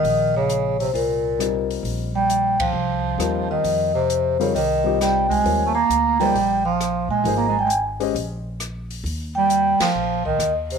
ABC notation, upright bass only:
X:1
M:4/4
L:1/8
Q:"Swing" 1/4=133
K:Fm
V:1 name="Upright bass" clef=bass
B,,,4 C,,4 | B,,,4 C,,2 E,,2 | F,,4 C,,4 | E,,2 =D,,2 B,,,3 B,, |
A,,,4 B,,,4 | E,,3 z B,,,2 E,,2 |]